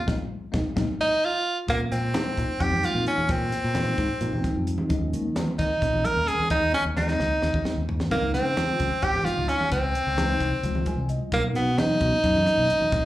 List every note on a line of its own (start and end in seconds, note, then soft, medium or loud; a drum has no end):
0.07 0.16 A#1 loud
0.07 0.15 G#3 loud
0.07 0.15 A#3 medium
0.07 0.15 D#4 loud
0.07 kick medium
0.07 snare medium
0.07 high conga loud
0.52 0.62 A#1 medium
0.52 0.60 G#3 medium
0.52 0.60 A#3 loud
0.52 0.60 D#4 medium
0.52 kick loud
0.52 snare loud
0.52 high conga loud
0.76 0.85 A#1 medium
0.76 0.84 G#3 loud
0.76 0.84 A#3 loud
0.76 0.84 D#4 loud
0.76 kick loud
0.76 snare loud
0.76 high conga loud
1.01 1.27 D#4 loud
1.25 1.58 F4 medium
1.67 1.90 A#2 medium
1.67 2.05 F3 medium
1.67 2.05 G#3 medium
1.67 1.80 A#3 loud
1.67 2.05 C4 medium
1.67 2.05 C#4 medium
1.67 kick loud
1.67 closed hi-hat medium
1.67 high conga medium
1.91 2.13 A#2 medium
1.91 2.64 C4 loud
1.91 closed hi-hat medium
1.91 low conga soft
2.14 2.49 F3 medium
2.14 2.49 G#3 soft
2.14 2.49 C4 medium
2.14 2.50 D#4 medium
2.14 snare loud
2.14 closed hi-hat medium
2.14 low conga medium
2.25 high conga medium
2.38 2.48 A#2 medium
2.38 kick medium
2.38 closed hi-hat medium
2.49 muted fingered electric bass stroke soft
2.60 2.82 F2 medium
2.60 3.30 F3 medium
2.60 3.31 G#3 medium
2.60 3.31 C4 medium
2.60 3.31 D#4 medium
2.60 2.87 G4 loud
2.60 kick loud
2.60 closed hi-hat medium
2.71 low conga medium
2.83 3.07 F4 medium
2.83 muted fingered electric bass stroke soft
2.83 closed hi-hat medium
2.83 high conga loud
2.95 3.06 A#2 medium
3.06 3.33 C#4 medium
3.06 closed hi-hat soft
3.06 low conga soft
3.17 muted fingered electric bass stroke soft
3.17 low conga medium
3.29 3.51 A#2 medium
3.29 4.68 C4 loud
3.29 kick loud
3.29 closed hi-hat medium
3.29 high conga medium
3.52 snare soft
3.52 closed hi-hat medium
3.52 low conga soft
3.64 3.96 A#2 medium
3.74 4.10 F3 medium
3.74 4.10 G#3 medium
3.74 4.10 C4 medium
3.74 4.10 D#4 medium
3.74 snare loud
3.74 closed hi-hat medium
3.74 low conga medium
3.87 high conga medium
3.98 4.09 G#2 medium
3.98 kick medium
3.98 closed hi-hat medium
4.20 4.32 A#2 medium
4.20 4.88 F3 medium
4.20 4.88 G#3 medium
4.20 4.90 C4 medium
4.20 4.90 D#4 medium
4.20 closed hi-hat medium
4.33 4.43 A#2 medium
4.33 low conga medium
4.44 muted fingered electric bass stroke soft
4.44 kick medium
4.44 snare soft
4.44 closed hi-hat medium
4.44 high conga medium
4.56 4.78 F2 medium
4.67 closed hi-hat medium
4.67 low conga soft
4.78 low conga medium
4.89 5.12 D#2 medium
4.89 5.26 F3 medium
4.89 5.26 G#3 medium
4.89 5.27 A#3 medium
4.89 5.27 C#4 medium
4.89 kick medium
4.89 closed hi-hat medium
4.89 high conga medium
5.13 5.35 D#3 medium
5.13 closed hi-hat medium
5.13 low conga soft
5.36 5.71 F3 medium
5.36 5.71 G#3 medium
5.36 5.71 A#3 medium
5.36 5.71 C4 medium
5.36 snare medium
5.36 closed hi-hat medium
5.36 low conga medium
5.48 high conga medium
5.59 5.70 D#3 medium
5.59 6.07 D#4 medium
5.59 kick medium
5.59 closed hi-hat medium
5.70 muted fingered electric bass stroke soft
5.82 6.03 A#1 medium
5.82 6.52 F3 medium
5.82 6.52 G#3 soft
5.82 6.52 A#3 medium
5.82 6.52 C#4 medium
5.82 kick medium
5.82 closed hi-hat medium
5.93 low conga medium
6.05 6.30 A#4 loud
6.05 muted fingered electric bass stroke soft
6.05 closed hi-hat medium
6.05 high conga medium
6.16 6.27 D#2 medium
6.28 6.50 G#4 medium
6.28 closed hi-hat medium
6.28 low conga soft
6.39 muted fingered electric bass stroke soft
6.39 low conga medium
6.50 6.72 D#2 medium
6.50 6.72 D#4 loud
6.50 kick loud
6.50 closed hi-hat medium
6.50 high conga medium
6.50 low conga soft
6.63 low conga soft
6.73 6.85 C#4 medium
6.73 snare medium
6.85 7.17 D#2 medium
6.85 low conga soft
6.96 7.31 F3 medium
6.96 7.31 G#3 medium
6.96 7.32 A#3 medium
6.96 7.32 C4 medium
6.96 7.85 D#4 medium
6.96 snare medium
6.96 low conga medium
7.08 snare medium
7.08 high conga medium
7.20 7.31 C#2 medium
7.20 snare medium
7.42 7.53 D#2 medium
7.42 8.09 F3 medium
7.42 8.10 G#3 soft
7.42 8.11 A#3 medium
7.42 8.11 C#4 medium
7.42 snare medium
7.54 7.65 D#2 medium
7.54 kick medium
7.54 low conga medium
7.65 muted fingered electric bass stroke soft
7.65 snare medium
7.65 high conga medium
7.77 7.99 D#2 medium
7.89 floor tom medium
7.99 snare medium
7.99 low conga medium
8.10 8.33 C#2 medium
8.10 8.47 F3 medium
8.10 8.48 G#3 medium
8.10 8.33 A#3 medium
8.10 8.48 C4 medium
8.10 8.48 D#4 medium
8.10 kick medium
8.10 closed hi-hat medium
8.10 high conga medium
8.34 8.56 C#3 medium
8.34 9.05 C4 loud
8.34 snare soft
8.34 closed hi-hat medium
8.34 low conga soft
8.57 8.92 F3 medium
8.57 8.92 G#3 medium
8.57 8.92 C4 medium
8.57 8.92 F4 medium
8.57 snare loud
8.57 closed hi-hat medium
8.57 low conga loud
8.68 high conga medium
8.80 8.91 C#3 medium
8.80 kick medium
8.80 closed hi-hat medium
8.91 muted fingered electric bass stroke soft
9.02 9.24 G#1 medium
9.02 9.73 F3 medium
9.02 9.73 G#3 medium
9.02 9.73 C4 medium
9.02 9.73 D#4 medium
9.02 9.27 G4 loud
9.02 kick medium
9.02 closed hi-hat medium
9.14 low conga medium
9.25 9.50 F4 loud
9.25 muted fingered electric bass stroke soft
9.25 snare soft
9.25 closed hi-hat medium
9.25 high conga medium
9.37 9.48 C#2 medium
9.48 9.71 C#4 medium
9.48 closed hi-hat medium
9.48 low conga soft
9.60 muted fingered electric bass stroke soft
9.60 low conga medium
9.72 9.93 C#2 medium
9.72 11.05 C4 loud
9.72 kick medium
9.72 closed hi-hat medium
9.72 high conga medium
9.95 closed hi-hat medium
9.95 low conga soft
10.07 10.38 C#2 medium
10.18 10.53 F3 medium
10.18 10.53 G#3 medium
10.18 10.53 C4 medium
10.18 10.53 D#4 medium
10.18 snare loud
10.18 closed hi-hat medium
10.18 low conga medium
10.29 high conga medium
10.40 10.51 C2 medium
10.40 kick medium
10.40 closed hi-hat medium
10.63 10.74 C#2 medium
10.63 11.32 F3 medium
10.63 11.33 G#3 medium
10.63 11.33 C4 medium
10.63 11.33 F4 medium
10.63 closed hi-hat medium
10.75 10.86 C#2 medium
10.75 low conga medium
10.86 11.08 G#5 medium
10.86 kick medium
10.86 closed hi-hat medium
10.86 high conga medium
10.97 11.19 C2 medium
11.09 11.31 D#5 medium
11.09 closed hi-hat soft
11.09 low conga soft
11.32 11.54 B1 medium
11.32 11.69 F#3 medium
11.32 11.69 A#3 medium
11.32 11.44 A#3 loud
11.32 11.69 C#4 medium
11.32 11.69 D#4 medium
11.32 kick medium
11.32 closed hi-hat medium
11.32 high conga medium
11.55 11.76 B2 medium
11.55 11.80 B3 loud
11.55 closed hi-hat soft
11.55 low conga soft
11.78 12.13 F#3 medium
11.78 12.13 A#3 medium
11.78 12.13 C#4 medium
11.78 13.05 D#4 loud
11.78 12.13 D#4 medium
11.78 snare loud
11.78 closed hi-hat medium
11.78 low conga medium
11.89 high conga medium
12.01 12.11 B2 medium
12.01 kick medium
12.01 closed hi-hat medium
12.12 muted fingered electric bass stroke soft
12.23 12.45 F#2 medium
12.23 12.92 F#3 medium
12.23 12.93 A#3 medium
12.23 12.91 C#4 medium
12.23 12.92 D#4 medium
12.23 kick loud
12.23 closed hi-hat medium
12.35 low conga medium
12.46 muted fingered electric bass stroke soft
12.46 closed hi-hat medium
12.46 high conga medium
12.58 12.69 B1 medium
12.70 closed hi-hat soft
12.80 muted fingered electric bass stroke soft
12.80 low conga medium
12.92 13.05 A#1 medium
12.92 13.05 G#3 medium
12.92 13.05 C4 medium
12.92 13.05 C#4 medium
12.92 13.05 D#4 medium
12.92 kick loud
12.92 closed hi-hat medium
12.92 high conga medium
12.92 low conga soft